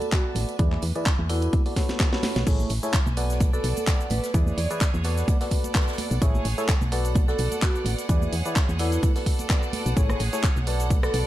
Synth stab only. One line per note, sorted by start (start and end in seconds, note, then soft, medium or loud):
0.12 0.57 B3 medium
0.12 0.57 F#4 medium
0.12 0.57 A4 medium
0.12 0.57 B4 medium
0.12 0.57 D5 medium
0.59 0.84 E3 medium
0.59 0.84 E4 medium
0.59 0.84 G#4 medium
0.59 0.84 B4 medium
0.59 0.84 D5 medium
0.95 1.10 E3 medium
0.95 1.10 E4 medium
0.95 1.10 G#4 medium
0.95 1.10 B4 medium
0.95 1.10 D5 loud
1.30 1.63 B3 medium
1.30 1.63 F#4 medium
1.30 1.63 A4 medium
1.30 1.63 B4 medium
1.30 1.63 D5 medium
1.66 1.74 B3 medium
1.66 1.74 F#4 medium
1.66 1.74 A4 medium
1.66 1.74 B4 medium
1.66 1.74 D5 medium
1.76 2.10 B3 medium
1.76 2.10 F#4 medium
1.76 2.10 A4 medium
1.76 2.10 B4 medium
1.76 2.10 C#5 loud
2.13 2.44 B3 medium
2.13 2.44 F#4 medium
2.13 2.44 A4 medium
2.13 2.44 B4 medium
2.13 2.44 C#5 loud
2.47 2.72 A3 medium
2.47 2.72 E4 medium
2.47 2.72 G#4 medium
2.47 2.72 A4 medium
2.47 2.72 C#5 medium
2.83 2.98 A3 medium
2.83 2.98 E4 medium
2.83 2.98 G#4 medium
2.83 2.98 A4 medium
2.83 2.98 C#5 loud
3.17 3.50 B3 medium
3.17 3.50 F#4 medium
3.17 3.50 A4 medium
3.17 3.50 B4 medium
3.17 3.50 D5 medium
3.53 3.85 B3 medium
3.53 3.85 F#4 medium
3.53 3.85 A4 medium
3.53 3.85 B4 medium
3.53 3.85 D5 medium
3.87 4.32 B3 medium
3.87 4.32 F#4 medium
3.87 4.32 A4 medium
3.87 4.32 B4 medium
3.87 4.32 D5 medium
4.34 4.59 E3 medium
4.34 4.59 E4 medium
4.34 4.59 G#4 medium
4.34 4.59 B4 medium
4.34 4.59 D5 medium
4.71 4.85 E3 medium
4.71 4.85 E4 medium
4.71 4.85 G#4 medium
4.71 4.85 B4 medium
4.71 4.85 D5 loud
5.05 5.38 B3 medium
5.05 5.38 F#4 medium
5.05 5.38 A4 medium
5.05 5.38 B4 medium
5.05 5.38 D5 medium
5.41 5.72 B3 medium
5.41 5.72 F#4 medium
5.41 5.72 A4 medium
5.41 5.72 B4 medium
5.41 5.72 D5 medium
5.75 6.19 B3 medium
5.75 6.19 F#4 medium
5.75 6.19 A4 medium
5.75 6.19 B4 medium
5.75 6.19 D5 medium
6.22 6.47 A3 medium
6.22 6.47 E4 medium
6.22 6.47 G#4 medium
6.22 6.47 A4 medium
6.22 6.47 C#5 medium
6.58 6.73 A3 medium
6.58 6.73 E4 medium
6.58 6.73 G#4 medium
6.58 6.73 A4 medium
6.58 6.73 C#5 loud
6.92 7.25 B3 medium
6.92 7.25 F#4 medium
6.92 7.25 A4 medium
6.92 7.25 B4 medium
6.92 7.25 D5 medium
7.28 7.60 B3 medium
7.28 7.60 F#4 medium
7.28 7.60 A4 medium
7.28 7.60 B4 medium
7.28 7.60 D5 medium
7.62 8.07 B3 medium
7.62 8.07 F#4 medium
7.62 8.07 A4 medium
7.62 8.07 B4 medium
7.62 8.07 D5 medium
8.09 8.34 E3 medium
8.09 8.34 E4 medium
8.09 8.34 G#4 medium
8.09 8.34 B4 medium
8.09 8.34 D5 medium
8.45 8.60 E3 medium
8.45 8.60 E4 medium
8.45 8.60 G#4 medium
8.45 8.60 B4 medium
8.45 8.60 D5 loud
8.79 9.13 B3 medium
8.79 9.13 F#4 medium
8.79 9.13 A4 medium
8.79 9.13 B4 medium
8.79 9.13 D5 medium
9.16 9.47 B3 medium
9.16 9.47 F#4 medium
9.16 9.47 A4 medium
9.16 9.47 B4 medium
9.16 9.47 D5 medium
9.50 9.94 B3 medium
9.50 9.94 F#4 medium
9.50 9.94 A4 medium
9.50 9.94 B4 medium
9.50 9.94 D5 medium
9.97 10.22 A3 medium
9.97 10.22 E4 medium
9.97 10.22 G#4 medium
9.97 10.22 A4 medium
9.97 10.22 C#5 medium
10.33 10.48 A3 loud
10.33 10.48 E4 medium
10.33 10.48 G#4 medium
10.33 10.48 A4 medium
10.33 10.48 C#5 loud
10.67 11.00 B3 medium
10.67 11.00 F#4 medium
10.67 11.00 A4 medium
10.67 11.00 B4 medium
10.67 11.00 D5 medium
11.03 11.27 B3 medium
11.03 11.27 F#4 medium
11.03 11.27 A4 medium
11.03 11.27 B4 medium
11.03 11.27 D5 medium